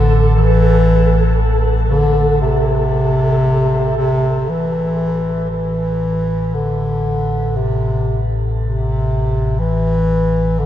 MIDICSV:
0, 0, Header, 1, 4, 480
1, 0, Start_track
1, 0, Tempo, 1038062
1, 151, Time_signature, 4, 2, 24, 8
1, 2553, Tempo, 1022147
1, 4966, End_track
2, 0, Start_track
2, 0, Title_t, "Synth texture"
2, 0, Program_c, 0, 99
2, 0, Note_on_c, 0, 69, 76
2, 2085, Note_off_c, 0, 69, 0
2, 4966, End_track
3, 0, Start_track
3, 0, Title_t, "Bass clarinet"
3, 0, Program_c, 1, 71
3, 0, Note_on_c, 1, 50, 94
3, 156, Note_off_c, 1, 50, 0
3, 162, Note_on_c, 1, 52, 103
3, 727, Note_off_c, 1, 52, 0
3, 872, Note_on_c, 1, 50, 89
3, 1092, Note_off_c, 1, 50, 0
3, 1115, Note_on_c, 1, 48, 88
3, 1823, Note_off_c, 1, 48, 0
3, 1835, Note_on_c, 1, 48, 84
3, 2075, Note_on_c, 1, 52, 79
3, 2082, Note_off_c, 1, 48, 0
3, 2542, Note_off_c, 1, 52, 0
3, 2545, Note_on_c, 1, 52, 80
3, 3034, Note_on_c, 1, 50, 78
3, 3041, Note_off_c, 1, 52, 0
3, 3512, Note_on_c, 1, 48, 70
3, 3519, Note_off_c, 1, 50, 0
3, 3874, Note_off_c, 1, 48, 0
3, 3995, Note_on_c, 1, 48, 76
3, 4465, Note_on_c, 1, 52, 84
3, 4472, Note_off_c, 1, 48, 0
3, 4934, Note_on_c, 1, 50, 83
3, 4941, Note_off_c, 1, 52, 0
3, 4966, Note_off_c, 1, 50, 0
3, 4966, End_track
4, 0, Start_track
4, 0, Title_t, "Synth drone"
4, 0, Program_c, 2, 95
4, 0, Note_on_c, 2, 33, 73
4, 0, Note_on_c, 2, 45, 76
4, 2063, Note_off_c, 2, 33, 0
4, 2063, Note_off_c, 2, 45, 0
4, 2068, Note_on_c, 2, 33, 67
4, 2068, Note_on_c, 2, 45, 71
4, 4966, Note_off_c, 2, 33, 0
4, 4966, Note_off_c, 2, 45, 0
4, 4966, End_track
0, 0, End_of_file